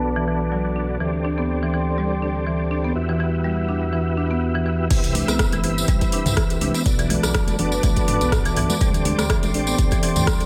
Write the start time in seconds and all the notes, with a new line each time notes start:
Already playing: B1 B3 D4 F#4 A4 B4 D5 A5 D6
0.16 E3
0.27 E3
0.52 F#3
0.76 D4
1.00 D2 E3 C4 D4 G4 A4 D5 G5 C6
1.25 D4
1.38 B3
1.62 E3
1.74 E3
1.98 G3
2.22 D4
2.47 E3
2.71 D4
2.84 B3
2.95 E2 G3 B3 E4 F#4 G4 E5 F#5 E6
3.09 E3
3.20 E3
3.44 G3
3.69 D4
3.93 E3
4.17 D4
4.31 B3
4.55 E3
4.66 E3
4.90 C2 E3 C4 E4 G4 B4 E5 B5 E6, kick, closed hi-hat, crash, tambourine, low conga
5.04 closed hi-hat, tambourine
5.15 D4, open hi-hat, high conga
5.28 C2 B3, cross-stick, closed hi-hat, tambourine, high conga
5.39 kick, cross-stick, closed hi-hat, tambourine
5.52 G1 E3, closed hi-hat, tambourine, high conga
5.64 E3 C4 E4 G4 B4 E5, open hi-hat
5.78 tambourine
5.88 C2 G3, kick, closed hi-hat, tambourine
6.01 kick, closed hi-hat, tambourine
6.12 D4, open hi-hat
6.25 C2, closed hi-hat, mid tom, tambourine, low conga
6.37 E3, kick, cross-stick, closed hi-hat, tambourine
6.50 closed hi-hat, tambourine
6.61 C2 D4, open hi-hat, high conga, low conga
6.74 B3, closed hi-hat, tambourine
6.86 B1 B3 D4 F#4 A4 B4 D5 A5 D6, kick, closed hi-hat, tambourine
6.99 E3, closed hi-hat, tambourine
7.10 E3, open hi-hat, high conga
7.23 B1, cross-stick, closed hi-hat, tambourine, high conga
7.34 F#3, kick, cross-stick, closed hi-hat, tambourine
7.48 F#1, closed hi-hat, tambourine, high conga
7.59 B3 D4 F#4 A4 D5, open hi-hat, low conga
7.72 tambourine
7.83 B1 E3, kick, closed hi-hat, tambourine, high conga
7.96 kick, closed hi-hat, tambourine
8.07 D4, mid tom, open hi-hat, high conga
8.21 B1 B3, closed hi-hat, tambourine
8.32 kick, cross-stick, closed hi-hat, mid tom, tambourine
8.45 E3, closed hi-hat, tambourine
8.56 B1 E3, mid tom, open hi-hat
8.70 closed hi-hat, tambourine, high conga
8.81 D2 G3 C4 D4 G4 A4 D5 G5 C6, kick, closed hi-hat, tambourine, low conga
8.94 closed hi-hat, tambourine
9.05 D4, open hi-hat, high conga
9.18 D2, cross-stick, closed hi-hat, tambourine, high conga
9.30 E3, kick, cross-stick, closed hi-hat, tambourine
9.43 A1, closed hi-hat, tambourine, high conga
9.54 C4 D4 G4 A4 D5, open hi-hat
9.67 B3, tambourine
9.78 D2, kick, closed hi-hat, tambourine
9.91 E3, kick, closed hi-hat, tambourine
10.03 E3, open hi-hat
10.16 D2, closed hi-hat, mid tom, tambourine, low conga
10.27 G3, kick, cross-stick, closed hi-hat, tambourine
10.40 closed hi-hat, tambourine